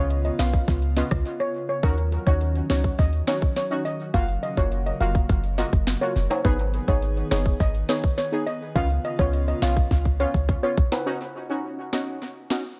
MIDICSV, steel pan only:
0, 0, Header, 1, 2, 480
1, 0, Start_track
1, 0, Key_signature, -6, "minor"
1, 0, Tempo, 576923
1, 1524, Time_signature, 4, 2, 24, 8
1, 10648, End_track
2, 0, Start_track
2, 0, Title_t, "Steel pan"
2, 0, Program_c, 0, 114
2, 206, Note_on_c, 0, 75, 75
2, 291, Note_off_c, 0, 75, 0
2, 327, Note_on_c, 0, 77, 86
2, 412, Note_off_c, 0, 77, 0
2, 806, Note_on_c, 0, 75, 75
2, 891, Note_off_c, 0, 75, 0
2, 1165, Note_on_c, 0, 73, 83
2, 1251, Note_off_c, 0, 73, 0
2, 1407, Note_on_c, 0, 73, 81
2, 1492, Note_off_c, 0, 73, 0
2, 1526, Note_on_c, 0, 70, 107
2, 1696, Note_off_c, 0, 70, 0
2, 1885, Note_on_c, 0, 73, 81
2, 1970, Note_off_c, 0, 73, 0
2, 2245, Note_on_c, 0, 73, 86
2, 2331, Note_off_c, 0, 73, 0
2, 2485, Note_on_c, 0, 75, 92
2, 2571, Note_off_c, 0, 75, 0
2, 2726, Note_on_c, 0, 73, 82
2, 2811, Note_off_c, 0, 73, 0
2, 2965, Note_on_c, 0, 73, 76
2, 3051, Note_off_c, 0, 73, 0
2, 3204, Note_on_c, 0, 75, 90
2, 3289, Note_off_c, 0, 75, 0
2, 3444, Note_on_c, 0, 77, 97
2, 3530, Note_off_c, 0, 77, 0
2, 3684, Note_on_c, 0, 75, 88
2, 3770, Note_off_c, 0, 75, 0
2, 3805, Note_on_c, 0, 73, 75
2, 3890, Note_off_c, 0, 73, 0
2, 4046, Note_on_c, 0, 75, 77
2, 4131, Note_off_c, 0, 75, 0
2, 4164, Note_on_c, 0, 77, 84
2, 4250, Note_off_c, 0, 77, 0
2, 4643, Note_on_c, 0, 75, 80
2, 4729, Note_off_c, 0, 75, 0
2, 5003, Note_on_c, 0, 73, 83
2, 5089, Note_off_c, 0, 73, 0
2, 5244, Note_on_c, 0, 73, 84
2, 5330, Note_off_c, 0, 73, 0
2, 5363, Note_on_c, 0, 71, 106
2, 5535, Note_off_c, 0, 71, 0
2, 5724, Note_on_c, 0, 73, 82
2, 5810, Note_off_c, 0, 73, 0
2, 6084, Note_on_c, 0, 73, 87
2, 6170, Note_off_c, 0, 73, 0
2, 6326, Note_on_c, 0, 75, 90
2, 6411, Note_off_c, 0, 75, 0
2, 6565, Note_on_c, 0, 73, 82
2, 6650, Note_off_c, 0, 73, 0
2, 6804, Note_on_c, 0, 73, 79
2, 6889, Note_off_c, 0, 73, 0
2, 7043, Note_on_c, 0, 75, 92
2, 7129, Note_off_c, 0, 75, 0
2, 7285, Note_on_c, 0, 77, 98
2, 7370, Note_off_c, 0, 77, 0
2, 7527, Note_on_c, 0, 75, 88
2, 7612, Note_off_c, 0, 75, 0
2, 7647, Note_on_c, 0, 73, 78
2, 7731, Note_off_c, 0, 73, 0
2, 7887, Note_on_c, 0, 75, 77
2, 7972, Note_off_c, 0, 75, 0
2, 8007, Note_on_c, 0, 77, 81
2, 8091, Note_off_c, 0, 77, 0
2, 8486, Note_on_c, 0, 73, 81
2, 8571, Note_off_c, 0, 73, 0
2, 8846, Note_on_c, 0, 73, 83
2, 8931, Note_off_c, 0, 73, 0
2, 9086, Note_on_c, 0, 71, 83
2, 9171, Note_off_c, 0, 71, 0
2, 10648, End_track
0, 0, End_of_file